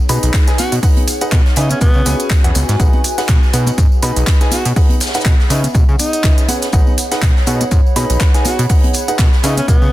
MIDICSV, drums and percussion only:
0, 0, Header, 1, 2, 480
1, 0, Start_track
1, 0, Key_signature, 5, "major"
1, 0, Tempo, 491803
1, 810, Time_signature, 4, 2, 24, 8
1, 9687, End_track
2, 0, Start_track
2, 0, Title_t, "Drums"
2, 89, Note_on_c, 9, 82, 67
2, 90, Note_on_c, 9, 46, 101
2, 93, Note_on_c, 9, 54, 94
2, 93, Note_on_c, 9, 63, 64
2, 187, Note_off_c, 9, 46, 0
2, 187, Note_off_c, 9, 82, 0
2, 190, Note_off_c, 9, 63, 0
2, 191, Note_off_c, 9, 54, 0
2, 221, Note_on_c, 9, 42, 41
2, 222, Note_on_c, 9, 54, 43
2, 224, Note_off_c, 9, 42, 0
2, 224, Note_on_c, 9, 42, 53
2, 320, Note_off_c, 9, 54, 0
2, 322, Note_off_c, 9, 42, 0
2, 328, Note_on_c, 9, 39, 120
2, 329, Note_on_c, 9, 36, 121
2, 329, Note_on_c, 9, 54, 58
2, 331, Note_on_c, 9, 82, 85
2, 333, Note_on_c, 9, 38, 103
2, 426, Note_off_c, 9, 39, 0
2, 427, Note_off_c, 9, 36, 0
2, 427, Note_off_c, 9, 54, 0
2, 429, Note_off_c, 9, 82, 0
2, 430, Note_off_c, 9, 38, 0
2, 460, Note_on_c, 9, 54, 26
2, 464, Note_on_c, 9, 42, 69
2, 472, Note_on_c, 9, 38, 43
2, 557, Note_off_c, 9, 54, 0
2, 561, Note_off_c, 9, 42, 0
2, 569, Note_off_c, 9, 38, 0
2, 569, Note_on_c, 9, 46, 94
2, 571, Note_on_c, 9, 38, 50
2, 571, Note_on_c, 9, 54, 90
2, 573, Note_on_c, 9, 82, 58
2, 581, Note_on_c, 9, 63, 93
2, 667, Note_off_c, 9, 46, 0
2, 669, Note_off_c, 9, 38, 0
2, 669, Note_off_c, 9, 54, 0
2, 671, Note_off_c, 9, 82, 0
2, 678, Note_off_c, 9, 63, 0
2, 703, Note_on_c, 9, 54, 40
2, 704, Note_on_c, 9, 42, 53
2, 707, Note_off_c, 9, 42, 0
2, 707, Note_on_c, 9, 42, 44
2, 800, Note_off_c, 9, 54, 0
2, 805, Note_off_c, 9, 42, 0
2, 808, Note_on_c, 9, 46, 73
2, 809, Note_on_c, 9, 36, 117
2, 809, Note_on_c, 9, 42, 68
2, 812, Note_on_c, 9, 54, 61
2, 906, Note_off_c, 9, 46, 0
2, 907, Note_off_c, 9, 36, 0
2, 907, Note_off_c, 9, 42, 0
2, 910, Note_off_c, 9, 54, 0
2, 941, Note_on_c, 9, 54, 25
2, 943, Note_on_c, 9, 42, 45
2, 947, Note_on_c, 9, 63, 100
2, 1039, Note_off_c, 9, 54, 0
2, 1041, Note_off_c, 9, 42, 0
2, 1045, Note_off_c, 9, 63, 0
2, 1050, Note_on_c, 9, 46, 109
2, 1053, Note_on_c, 9, 54, 89
2, 1055, Note_on_c, 9, 82, 59
2, 1147, Note_off_c, 9, 46, 0
2, 1151, Note_off_c, 9, 54, 0
2, 1152, Note_off_c, 9, 82, 0
2, 1180, Note_on_c, 9, 54, 42
2, 1184, Note_on_c, 9, 42, 50
2, 1278, Note_off_c, 9, 54, 0
2, 1282, Note_off_c, 9, 42, 0
2, 1287, Note_on_c, 9, 38, 101
2, 1288, Note_on_c, 9, 39, 123
2, 1289, Note_on_c, 9, 36, 126
2, 1289, Note_on_c, 9, 54, 47
2, 1290, Note_on_c, 9, 42, 65
2, 1290, Note_on_c, 9, 63, 64
2, 1295, Note_on_c, 9, 82, 82
2, 1384, Note_off_c, 9, 38, 0
2, 1386, Note_off_c, 9, 39, 0
2, 1387, Note_off_c, 9, 36, 0
2, 1387, Note_off_c, 9, 42, 0
2, 1387, Note_off_c, 9, 54, 0
2, 1388, Note_off_c, 9, 63, 0
2, 1392, Note_off_c, 9, 82, 0
2, 1423, Note_on_c, 9, 38, 52
2, 1425, Note_on_c, 9, 54, 30
2, 1520, Note_off_c, 9, 38, 0
2, 1522, Note_off_c, 9, 54, 0
2, 1524, Note_on_c, 9, 54, 98
2, 1526, Note_on_c, 9, 38, 45
2, 1528, Note_on_c, 9, 82, 66
2, 1529, Note_on_c, 9, 46, 99
2, 1621, Note_off_c, 9, 54, 0
2, 1623, Note_off_c, 9, 38, 0
2, 1626, Note_off_c, 9, 82, 0
2, 1627, Note_off_c, 9, 46, 0
2, 1653, Note_on_c, 9, 54, 36
2, 1661, Note_on_c, 9, 63, 89
2, 1665, Note_on_c, 9, 42, 51
2, 1751, Note_off_c, 9, 54, 0
2, 1758, Note_off_c, 9, 63, 0
2, 1762, Note_off_c, 9, 42, 0
2, 1766, Note_on_c, 9, 54, 49
2, 1768, Note_on_c, 9, 82, 83
2, 1769, Note_on_c, 9, 36, 126
2, 1770, Note_on_c, 9, 42, 66
2, 1863, Note_off_c, 9, 54, 0
2, 1866, Note_off_c, 9, 82, 0
2, 1867, Note_off_c, 9, 36, 0
2, 1868, Note_off_c, 9, 42, 0
2, 1893, Note_on_c, 9, 54, 29
2, 1990, Note_off_c, 9, 54, 0
2, 2001, Note_on_c, 9, 63, 70
2, 2009, Note_on_c, 9, 54, 89
2, 2009, Note_on_c, 9, 82, 69
2, 2010, Note_on_c, 9, 46, 104
2, 2098, Note_off_c, 9, 63, 0
2, 2106, Note_off_c, 9, 54, 0
2, 2107, Note_off_c, 9, 46, 0
2, 2107, Note_off_c, 9, 82, 0
2, 2144, Note_on_c, 9, 42, 52
2, 2149, Note_on_c, 9, 54, 38
2, 2238, Note_off_c, 9, 54, 0
2, 2238, Note_on_c, 9, 54, 59
2, 2242, Note_off_c, 9, 42, 0
2, 2245, Note_on_c, 9, 38, 120
2, 2248, Note_on_c, 9, 82, 90
2, 2249, Note_on_c, 9, 36, 119
2, 2249, Note_on_c, 9, 39, 119
2, 2335, Note_off_c, 9, 54, 0
2, 2343, Note_off_c, 9, 38, 0
2, 2345, Note_off_c, 9, 82, 0
2, 2347, Note_off_c, 9, 36, 0
2, 2347, Note_off_c, 9, 39, 0
2, 2379, Note_on_c, 9, 54, 27
2, 2384, Note_on_c, 9, 42, 67
2, 2477, Note_off_c, 9, 54, 0
2, 2482, Note_off_c, 9, 42, 0
2, 2488, Note_on_c, 9, 54, 103
2, 2488, Note_on_c, 9, 82, 71
2, 2490, Note_on_c, 9, 46, 101
2, 2497, Note_on_c, 9, 63, 101
2, 2585, Note_off_c, 9, 82, 0
2, 2586, Note_off_c, 9, 54, 0
2, 2588, Note_off_c, 9, 46, 0
2, 2594, Note_off_c, 9, 63, 0
2, 2621, Note_on_c, 9, 38, 37
2, 2625, Note_on_c, 9, 42, 52
2, 2629, Note_on_c, 9, 54, 37
2, 2719, Note_off_c, 9, 38, 0
2, 2722, Note_off_c, 9, 42, 0
2, 2726, Note_off_c, 9, 54, 0
2, 2729, Note_on_c, 9, 36, 117
2, 2729, Note_on_c, 9, 42, 61
2, 2730, Note_on_c, 9, 54, 54
2, 2738, Note_on_c, 9, 82, 79
2, 2827, Note_off_c, 9, 36, 0
2, 2827, Note_off_c, 9, 42, 0
2, 2828, Note_off_c, 9, 54, 0
2, 2836, Note_off_c, 9, 82, 0
2, 2859, Note_on_c, 9, 54, 26
2, 2864, Note_on_c, 9, 63, 89
2, 2957, Note_off_c, 9, 54, 0
2, 2962, Note_off_c, 9, 63, 0
2, 2968, Note_on_c, 9, 54, 86
2, 2970, Note_on_c, 9, 46, 114
2, 2973, Note_on_c, 9, 82, 57
2, 3065, Note_off_c, 9, 54, 0
2, 3068, Note_off_c, 9, 46, 0
2, 3070, Note_off_c, 9, 82, 0
2, 3103, Note_on_c, 9, 42, 52
2, 3104, Note_on_c, 9, 38, 46
2, 3107, Note_on_c, 9, 54, 41
2, 3201, Note_off_c, 9, 38, 0
2, 3201, Note_off_c, 9, 42, 0
2, 3204, Note_on_c, 9, 82, 88
2, 3205, Note_off_c, 9, 54, 0
2, 3207, Note_on_c, 9, 54, 48
2, 3208, Note_on_c, 9, 39, 124
2, 3209, Note_on_c, 9, 36, 120
2, 3209, Note_on_c, 9, 42, 63
2, 3211, Note_on_c, 9, 38, 117
2, 3215, Note_on_c, 9, 63, 68
2, 3301, Note_off_c, 9, 82, 0
2, 3305, Note_off_c, 9, 54, 0
2, 3306, Note_off_c, 9, 39, 0
2, 3307, Note_off_c, 9, 36, 0
2, 3307, Note_off_c, 9, 42, 0
2, 3309, Note_off_c, 9, 38, 0
2, 3313, Note_off_c, 9, 63, 0
2, 3342, Note_on_c, 9, 38, 37
2, 3347, Note_on_c, 9, 54, 30
2, 3439, Note_off_c, 9, 38, 0
2, 3445, Note_off_c, 9, 54, 0
2, 3450, Note_on_c, 9, 46, 97
2, 3451, Note_on_c, 9, 54, 102
2, 3452, Note_on_c, 9, 82, 69
2, 3547, Note_off_c, 9, 46, 0
2, 3548, Note_off_c, 9, 54, 0
2, 3550, Note_off_c, 9, 82, 0
2, 3577, Note_on_c, 9, 54, 40
2, 3579, Note_on_c, 9, 63, 95
2, 3584, Note_on_c, 9, 42, 51
2, 3674, Note_off_c, 9, 54, 0
2, 3676, Note_off_c, 9, 63, 0
2, 3682, Note_off_c, 9, 42, 0
2, 3689, Note_on_c, 9, 36, 127
2, 3689, Note_on_c, 9, 42, 59
2, 3690, Note_on_c, 9, 54, 54
2, 3693, Note_on_c, 9, 82, 93
2, 3787, Note_off_c, 9, 36, 0
2, 3787, Note_off_c, 9, 42, 0
2, 3787, Note_off_c, 9, 54, 0
2, 3790, Note_off_c, 9, 82, 0
2, 3824, Note_on_c, 9, 54, 29
2, 3922, Note_off_c, 9, 54, 0
2, 3927, Note_on_c, 9, 54, 96
2, 3929, Note_on_c, 9, 46, 107
2, 3932, Note_on_c, 9, 63, 64
2, 3935, Note_on_c, 9, 82, 69
2, 4025, Note_off_c, 9, 54, 0
2, 4027, Note_off_c, 9, 46, 0
2, 4030, Note_off_c, 9, 63, 0
2, 4033, Note_off_c, 9, 82, 0
2, 4063, Note_on_c, 9, 54, 39
2, 4064, Note_on_c, 9, 42, 49
2, 4070, Note_off_c, 9, 42, 0
2, 4070, Note_on_c, 9, 42, 42
2, 4161, Note_off_c, 9, 54, 0
2, 4164, Note_on_c, 9, 54, 53
2, 4166, Note_on_c, 9, 38, 116
2, 4166, Note_on_c, 9, 82, 87
2, 4168, Note_off_c, 9, 42, 0
2, 4168, Note_on_c, 9, 39, 123
2, 4169, Note_on_c, 9, 36, 121
2, 4262, Note_off_c, 9, 54, 0
2, 4264, Note_off_c, 9, 38, 0
2, 4264, Note_off_c, 9, 82, 0
2, 4266, Note_off_c, 9, 36, 0
2, 4266, Note_off_c, 9, 39, 0
2, 4299, Note_on_c, 9, 38, 44
2, 4303, Note_on_c, 9, 42, 65
2, 4307, Note_on_c, 9, 54, 25
2, 4396, Note_off_c, 9, 38, 0
2, 4401, Note_off_c, 9, 42, 0
2, 4404, Note_on_c, 9, 38, 48
2, 4405, Note_off_c, 9, 54, 0
2, 4405, Note_on_c, 9, 63, 95
2, 4405, Note_on_c, 9, 82, 65
2, 4408, Note_on_c, 9, 46, 104
2, 4410, Note_on_c, 9, 54, 97
2, 4502, Note_off_c, 9, 38, 0
2, 4503, Note_off_c, 9, 63, 0
2, 4503, Note_off_c, 9, 82, 0
2, 4506, Note_off_c, 9, 46, 0
2, 4508, Note_off_c, 9, 54, 0
2, 4542, Note_on_c, 9, 42, 52
2, 4543, Note_on_c, 9, 54, 36
2, 4640, Note_off_c, 9, 42, 0
2, 4641, Note_off_c, 9, 54, 0
2, 4649, Note_on_c, 9, 36, 113
2, 4649, Note_on_c, 9, 42, 61
2, 4651, Note_on_c, 9, 54, 54
2, 4655, Note_on_c, 9, 46, 79
2, 4746, Note_off_c, 9, 36, 0
2, 4746, Note_off_c, 9, 42, 0
2, 4749, Note_off_c, 9, 54, 0
2, 4752, Note_off_c, 9, 46, 0
2, 4777, Note_on_c, 9, 63, 85
2, 4782, Note_on_c, 9, 54, 28
2, 4788, Note_on_c, 9, 42, 45
2, 4875, Note_off_c, 9, 63, 0
2, 4880, Note_off_c, 9, 54, 0
2, 4884, Note_on_c, 9, 54, 88
2, 4885, Note_off_c, 9, 42, 0
2, 4889, Note_on_c, 9, 46, 114
2, 4892, Note_on_c, 9, 38, 89
2, 4898, Note_on_c, 9, 82, 64
2, 4948, Note_off_c, 9, 82, 0
2, 4948, Note_on_c, 9, 82, 69
2, 4963, Note_off_c, 9, 38, 0
2, 4963, Note_on_c, 9, 38, 90
2, 4981, Note_off_c, 9, 54, 0
2, 4987, Note_off_c, 9, 46, 0
2, 5018, Note_off_c, 9, 82, 0
2, 5018, Note_on_c, 9, 82, 63
2, 5023, Note_on_c, 9, 54, 37
2, 5024, Note_on_c, 9, 42, 50
2, 5026, Note_off_c, 9, 38, 0
2, 5026, Note_on_c, 9, 38, 79
2, 5075, Note_off_c, 9, 38, 0
2, 5075, Note_on_c, 9, 38, 86
2, 5084, Note_off_c, 9, 82, 0
2, 5084, Note_on_c, 9, 82, 65
2, 5121, Note_off_c, 9, 54, 0
2, 5122, Note_off_c, 9, 42, 0
2, 5128, Note_off_c, 9, 38, 0
2, 5128, Note_on_c, 9, 38, 122
2, 5129, Note_on_c, 9, 36, 127
2, 5129, Note_on_c, 9, 39, 118
2, 5129, Note_on_c, 9, 54, 58
2, 5130, Note_on_c, 9, 42, 60
2, 5132, Note_on_c, 9, 63, 63
2, 5181, Note_off_c, 9, 82, 0
2, 5226, Note_off_c, 9, 36, 0
2, 5226, Note_off_c, 9, 38, 0
2, 5226, Note_off_c, 9, 39, 0
2, 5227, Note_off_c, 9, 42, 0
2, 5227, Note_off_c, 9, 54, 0
2, 5229, Note_off_c, 9, 63, 0
2, 5265, Note_on_c, 9, 38, 58
2, 5269, Note_on_c, 9, 54, 25
2, 5363, Note_off_c, 9, 38, 0
2, 5366, Note_off_c, 9, 54, 0
2, 5369, Note_on_c, 9, 38, 45
2, 5369, Note_on_c, 9, 82, 64
2, 5371, Note_on_c, 9, 46, 95
2, 5372, Note_on_c, 9, 54, 93
2, 5467, Note_off_c, 9, 38, 0
2, 5467, Note_off_c, 9, 82, 0
2, 5468, Note_off_c, 9, 46, 0
2, 5470, Note_off_c, 9, 54, 0
2, 5500, Note_on_c, 9, 63, 84
2, 5505, Note_on_c, 9, 42, 48
2, 5510, Note_on_c, 9, 54, 42
2, 5597, Note_off_c, 9, 63, 0
2, 5602, Note_off_c, 9, 42, 0
2, 5607, Note_off_c, 9, 54, 0
2, 5609, Note_on_c, 9, 36, 124
2, 5610, Note_on_c, 9, 82, 78
2, 5611, Note_on_c, 9, 42, 60
2, 5612, Note_on_c, 9, 54, 51
2, 5707, Note_off_c, 9, 36, 0
2, 5708, Note_off_c, 9, 42, 0
2, 5708, Note_off_c, 9, 82, 0
2, 5709, Note_off_c, 9, 54, 0
2, 5746, Note_on_c, 9, 54, 26
2, 5843, Note_off_c, 9, 54, 0
2, 5847, Note_on_c, 9, 82, 68
2, 5851, Note_on_c, 9, 46, 107
2, 5852, Note_on_c, 9, 54, 91
2, 5852, Note_on_c, 9, 63, 61
2, 5945, Note_off_c, 9, 82, 0
2, 5948, Note_off_c, 9, 46, 0
2, 5949, Note_off_c, 9, 63, 0
2, 5950, Note_off_c, 9, 54, 0
2, 5984, Note_on_c, 9, 54, 43
2, 5985, Note_on_c, 9, 42, 47
2, 6081, Note_off_c, 9, 54, 0
2, 6083, Note_off_c, 9, 42, 0
2, 6086, Note_on_c, 9, 82, 80
2, 6089, Note_on_c, 9, 36, 116
2, 6089, Note_on_c, 9, 39, 118
2, 6089, Note_on_c, 9, 54, 52
2, 6093, Note_on_c, 9, 38, 105
2, 6184, Note_off_c, 9, 82, 0
2, 6186, Note_off_c, 9, 39, 0
2, 6187, Note_off_c, 9, 36, 0
2, 6187, Note_off_c, 9, 54, 0
2, 6190, Note_off_c, 9, 38, 0
2, 6225, Note_on_c, 9, 42, 64
2, 6229, Note_on_c, 9, 54, 27
2, 6323, Note_off_c, 9, 42, 0
2, 6326, Note_off_c, 9, 54, 0
2, 6327, Note_on_c, 9, 63, 92
2, 6330, Note_on_c, 9, 46, 98
2, 6333, Note_on_c, 9, 82, 62
2, 6335, Note_on_c, 9, 54, 95
2, 6425, Note_off_c, 9, 63, 0
2, 6428, Note_off_c, 9, 46, 0
2, 6431, Note_off_c, 9, 82, 0
2, 6433, Note_off_c, 9, 54, 0
2, 6459, Note_on_c, 9, 54, 42
2, 6465, Note_on_c, 9, 38, 36
2, 6465, Note_on_c, 9, 42, 52
2, 6556, Note_off_c, 9, 54, 0
2, 6563, Note_off_c, 9, 38, 0
2, 6563, Note_off_c, 9, 42, 0
2, 6568, Note_on_c, 9, 82, 90
2, 6570, Note_on_c, 9, 36, 115
2, 6571, Note_on_c, 9, 42, 61
2, 6575, Note_on_c, 9, 54, 54
2, 6666, Note_off_c, 9, 82, 0
2, 6667, Note_off_c, 9, 36, 0
2, 6669, Note_off_c, 9, 42, 0
2, 6673, Note_off_c, 9, 54, 0
2, 6704, Note_on_c, 9, 54, 26
2, 6706, Note_on_c, 9, 63, 78
2, 6801, Note_off_c, 9, 54, 0
2, 6804, Note_off_c, 9, 63, 0
2, 6810, Note_on_c, 9, 54, 81
2, 6811, Note_on_c, 9, 46, 110
2, 6813, Note_on_c, 9, 82, 68
2, 6908, Note_off_c, 9, 46, 0
2, 6908, Note_off_c, 9, 54, 0
2, 6911, Note_off_c, 9, 82, 0
2, 6944, Note_on_c, 9, 54, 37
2, 6945, Note_on_c, 9, 42, 51
2, 6949, Note_on_c, 9, 38, 47
2, 7041, Note_off_c, 9, 54, 0
2, 7042, Note_off_c, 9, 42, 0
2, 7046, Note_off_c, 9, 38, 0
2, 7049, Note_on_c, 9, 38, 114
2, 7050, Note_on_c, 9, 36, 116
2, 7050, Note_on_c, 9, 39, 112
2, 7050, Note_on_c, 9, 82, 89
2, 7051, Note_on_c, 9, 42, 61
2, 7053, Note_on_c, 9, 54, 55
2, 7053, Note_on_c, 9, 63, 57
2, 7147, Note_off_c, 9, 36, 0
2, 7147, Note_off_c, 9, 38, 0
2, 7147, Note_off_c, 9, 39, 0
2, 7148, Note_off_c, 9, 42, 0
2, 7148, Note_off_c, 9, 82, 0
2, 7150, Note_off_c, 9, 63, 0
2, 7151, Note_off_c, 9, 54, 0
2, 7186, Note_on_c, 9, 38, 41
2, 7190, Note_on_c, 9, 54, 24
2, 7284, Note_off_c, 9, 38, 0
2, 7288, Note_off_c, 9, 54, 0
2, 7288, Note_on_c, 9, 82, 74
2, 7290, Note_on_c, 9, 54, 92
2, 7292, Note_on_c, 9, 46, 86
2, 7386, Note_off_c, 9, 82, 0
2, 7388, Note_off_c, 9, 54, 0
2, 7389, Note_off_c, 9, 46, 0
2, 7423, Note_on_c, 9, 54, 40
2, 7425, Note_on_c, 9, 42, 49
2, 7430, Note_on_c, 9, 63, 89
2, 7520, Note_off_c, 9, 54, 0
2, 7523, Note_off_c, 9, 42, 0
2, 7527, Note_on_c, 9, 54, 47
2, 7528, Note_off_c, 9, 63, 0
2, 7530, Note_on_c, 9, 36, 116
2, 7530, Note_on_c, 9, 42, 58
2, 7530, Note_on_c, 9, 82, 92
2, 7625, Note_off_c, 9, 54, 0
2, 7627, Note_off_c, 9, 36, 0
2, 7628, Note_off_c, 9, 42, 0
2, 7628, Note_off_c, 9, 82, 0
2, 7675, Note_on_c, 9, 54, 28
2, 7769, Note_on_c, 9, 46, 105
2, 7772, Note_off_c, 9, 54, 0
2, 7772, Note_on_c, 9, 54, 92
2, 7773, Note_on_c, 9, 82, 61
2, 7775, Note_on_c, 9, 63, 59
2, 7867, Note_off_c, 9, 46, 0
2, 7869, Note_off_c, 9, 54, 0
2, 7871, Note_off_c, 9, 82, 0
2, 7872, Note_off_c, 9, 63, 0
2, 7902, Note_on_c, 9, 42, 44
2, 7904, Note_off_c, 9, 42, 0
2, 7904, Note_on_c, 9, 42, 50
2, 7907, Note_on_c, 9, 54, 39
2, 8001, Note_off_c, 9, 42, 0
2, 8004, Note_off_c, 9, 54, 0
2, 8008, Note_on_c, 9, 39, 110
2, 8009, Note_on_c, 9, 36, 114
2, 8009, Note_on_c, 9, 38, 114
2, 8009, Note_on_c, 9, 82, 85
2, 8016, Note_on_c, 9, 54, 58
2, 8106, Note_off_c, 9, 38, 0
2, 8106, Note_off_c, 9, 39, 0
2, 8106, Note_off_c, 9, 82, 0
2, 8107, Note_off_c, 9, 36, 0
2, 8113, Note_off_c, 9, 54, 0
2, 8142, Note_on_c, 9, 38, 46
2, 8143, Note_on_c, 9, 42, 63
2, 8148, Note_on_c, 9, 54, 24
2, 8239, Note_off_c, 9, 38, 0
2, 8241, Note_off_c, 9, 42, 0
2, 8243, Note_off_c, 9, 54, 0
2, 8243, Note_on_c, 9, 54, 85
2, 8248, Note_on_c, 9, 38, 49
2, 8250, Note_on_c, 9, 46, 96
2, 8250, Note_on_c, 9, 63, 89
2, 8252, Note_on_c, 9, 82, 65
2, 8341, Note_off_c, 9, 54, 0
2, 8346, Note_off_c, 9, 38, 0
2, 8348, Note_off_c, 9, 46, 0
2, 8348, Note_off_c, 9, 63, 0
2, 8349, Note_off_c, 9, 82, 0
2, 8382, Note_on_c, 9, 54, 35
2, 8384, Note_on_c, 9, 42, 48
2, 8386, Note_off_c, 9, 42, 0
2, 8386, Note_on_c, 9, 42, 44
2, 8480, Note_off_c, 9, 54, 0
2, 8483, Note_off_c, 9, 42, 0
2, 8483, Note_on_c, 9, 46, 75
2, 8487, Note_on_c, 9, 54, 54
2, 8489, Note_on_c, 9, 36, 111
2, 8490, Note_on_c, 9, 42, 66
2, 8581, Note_off_c, 9, 46, 0
2, 8584, Note_off_c, 9, 54, 0
2, 8587, Note_off_c, 9, 36, 0
2, 8588, Note_off_c, 9, 42, 0
2, 8623, Note_on_c, 9, 54, 23
2, 8627, Note_on_c, 9, 42, 48
2, 8627, Note_on_c, 9, 63, 96
2, 8721, Note_off_c, 9, 54, 0
2, 8721, Note_on_c, 9, 82, 60
2, 8724, Note_off_c, 9, 42, 0
2, 8725, Note_off_c, 9, 63, 0
2, 8729, Note_on_c, 9, 54, 85
2, 8730, Note_on_c, 9, 46, 99
2, 8819, Note_off_c, 9, 82, 0
2, 8827, Note_off_c, 9, 54, 0
2, 8828, Note_off_c, 9, 46, 0
2, 8863, Note_on_c, 9, 54, 38
2, 8865, Note_on_c, 9, 42, 51
2, 8960, Note_off_c, 9, 54, 0
2, 8962, Note_off_c, 9, 42, 0
2, 8965, Note_on_c, 9, 82, 81
2, 8968, Note_on_c, 9, 38, 110
2, 8968, Note_on_c, 9, 63, 55
2, 8969, Note_on_c, 9, 36, 114
2, 8969, Note_on_c, 9, 39, 107
2, 8970, Note_on_c, 9, 42, 64
2, 8973, Note_on_c, 9, 54, 48
2, 9062, Note_off_c, 9, 82, 0
2, 9065, Note_off_c, 9, 38, 0
2, 9065, Note_off_c, 9, 63, 0
2, 9066, Note_off_c, 9, 39, 0
2, 9067, Note_off_c, 9, 36, 0
2, 9067, Note_off_c, 9, 42, 0
2, 9071, Note_off_c, 9, 54, 0
2, 9103, Note_on_c, 9, 38, 53
2, 9105, Note_on_c, 9, 54, 27
2, 9201, Note_off_c, 9, 38, 0
2, 9202, Note_off_c, 9, 54, 0
2, 9208, Note_on_c, 9, 82, 71
2, 9209, Note_on_c, 9, 38, 39
2, 9211, Note_on_c, 9, 46, 89
2, 9212, Note_on_c, 9, 54, 91
2, 9306, Note_off_c, 9, 38, 0
2, 9306, Note_off_c, 9, 82, 0
2, 9308, Note_off_c, 9, 46, 0
2, 9309, Note_off_c, 9, 54, 0
2, 9340, Note_on_c, 9, 63, 75
2, 9341, Note_on_c, 9, 54, 38
2, 9345, Note_on_c, 9, 42, 52
2, 9437, Note_off_c, 9, 63, 0
2, 9438, Note_off_c, 9, 54, 0
2, 9442, Note_off_c, 9, 42, 0
2, 9450, Note_on_c, 9, 36, 121
2, 9451, Note_on_c, 9, 42, 64
2, 9454, Note_on_c, 9, 82, 94
2, 9457, Note_on_c, 9, 54, 50
2, 9547, Note_off_c, 9, 36, 0
2, 9549, Note_off_c, 9, 42, 0
2, 9552, Note_off_c, 9, 82, 0
2, 9555, Note_off_c, 9, 54, 0
2, 9582, Note_on_c, 9, 54, 27
2, 9679, Note_off_c, 9, 54, 0
2, 9687, End_track
0, 0, End_of_file